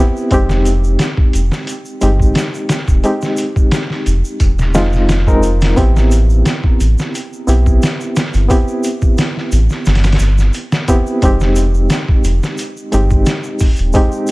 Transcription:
0.00 B3 C4 E4 G4
0.17 shaker
0.31 F1 G#3 C4 D#4 G4, kick, closed hi-hat, shaker
0.49 snare, shaker
0.65 closed hi-hat, shaker
0.84 shaker
0.99 snare, closed hi-hat, shaker
1.17 kick
1.33 F1, closed hi-hat, shaker
1.52 snare, shaker
1.67 closed hi-hat, shaker
1.85 shaker
2.01 G1 G#3 C4 D#4 G4, closed hi-hat, shaker
2.20 kick, shaker
2.35 snare, closed hi-hat, shaker
2.54 shaker
2.69 snare, closed hi-hat, shaker
2.88 D#1, kick, shaker
3.04 G#3 C4 D#4 G4, closed hi-hat, shaker
3.21 snare, shaker
3.37 closed hi-hat, shaker
3.56 kick, shaker
3.71 snare, closed hi-hat, shaker
3.90 snare
4.06 F1, closed hi-hat, shaker
4.25 shaker
4.40 D#1, kick, closed hi-hat, shaker
4.59 snare, shaker
4.74 F1 G#3 C4 D#4 F4, snare, closed hi-hat, shaker
4.93 snare, shaker
5.09 snare, closed hi-hat, shaker
5.27 G#3 C4 D#4 A#4, kick, shaker
5.43 closed hi-hat, shaker
5.61 snare, closed hi-hat, shaker
5.76 A1 B3 C4 E4 G4, kick, closed hi-hat, shaker
5.96 snare, shaker
6.11 closed hi-hat, shaker
6.30 shaker
6.45 snare, closed hi-hat, shaker
6.64 kick
6.80 A1, closed hi-hat, shaker
6.98 snare, shaker
7.15 closed hi-hat, shaker
7.33 shaker
7.47 B1 B3 C4 E4 G4, closed hi-hat, shaker
7.66 kick, shaker
7.82 snare, closed hi-hat, shaker
8.01 shaker
8.16 snare, closed hi-hat, shaker
8.34 G1, closed hi-hat, shaker
8.48 B3 C4 E4 G4, kick, closed hi-hat, shaker
8.68 shaker
8.84 closed hi-hat, shaker
9.02 kick, shaker
9.18 snare, closed hi-hat, shaker
9.37 snare
9.52 A1, closed hi-hat, shaker
9.69 snare, shaker
9.85 G1, snare, closed hi-hat, shaker
9.95 snare, closed hi-hat
10.04 snare, closed hi-hat, shaker
10.12 snare, closed hi-hat
10.19 G1, closed hi-hat, shaker
10.38 snare, shaker
10.53 closed hi-hat, shaker
10.72 snare, shaker
10.88 B3 C4 E4 G4, kick, closed hi-hat, shaker
11.07 shaker
11.22 F1 G#3 C4 D#4 G4, kick, closed hi-hat, shaker
11.40 snare, shaker
11.56 closed hi-hat, shaker
11.74 shaker
11.90 snare, closed hi-hat, shaker
12.08 kick
12.24 F1, closed hi-hat, shaker
12.43 snare, shaker
12.58 closed hi-hat, shaker
12.77 shaker
12.92 G1 G#3 C4 D#4 G4, closed hi-hat, shaker
13.10 kick, shaker
13.26 snare, closed hi-hat, shaker
13.43 shaker
13.59 kick, open hi-hat, shaker
13.76 D#1, closed hi-hat, shaker
13.93 G#3 C4 D#4 G4, kick, closed hi-hat, shaker
14.12 shaker
14.27 shaker

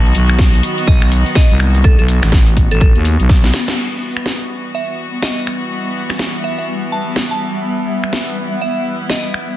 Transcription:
Already playing: B1 D#3 F#3 B3 F#4 D#5 F#5
0.06 shaker
0.15 B1, open hi-hat, shaker
0.30 finger snap, shaker
0.39 kick, snare, closed hi-hat, shaker
0.54 closed hi-hat, shaker
0.63 open hi-hat, shaker
0.78 open hi-hat, shaker
0.88 B1 D#5, kick, closed hi-hat, shaker
1.02 finger snap, shaker
1.12 open hi-hat, shaker
1.26 closed hi-hat, shaker
1.35 D#5, kick, snare, closed hi-hat, shaker
1.50 C2, shaker
1.60 finger snap, open hi-hat, shaker
1.75 closed hi-hat, shaker
1.84 A4, kick, closed hi-hat, shaker
1.99 B1 A4, closed hi-hat, shaker
2.08 open hi-hat, shaker
2.23 A1, finger snap, snare, closed hi-hat, shaker
2.32 kick, snare, closed hi-hat, shaker
2.47 closed hi-hat, shaker
2.57 kick, open hi-hat, shaker
2.71 A1 A4, open hi-hat, shaker
2.81 A4, kick, closed hi-hat, shaker
2.96 D#2, closed hi-hat, shaker
3.05 open hi-hat, shaker
3.20 B1, closed hi-hat, shaker
3.29 kick, snare, closed hi-hat, shaker
3.44 snare, shaker
3.54 snare, open hi-hat, shaker
3.68 snare, closed hi-hat, shaker
3.78 E3 G3 B3 F#4, crash
4.06 G3
4.17 finger snap
4.22 E5
4.26 snare
4.40 F#5
4.75 E5
5.22 D#5, snare
5.47 finger snap
6.10 finger snap, snare
6.19 snare
6.44 E5
6.58 E5
6.92 A5
7.16 snare
7.31 A5
7.65 E4
8.04 finger snap
8.13 snare
8.62 E5
9.10 D#5, snare
9.34 finger snap

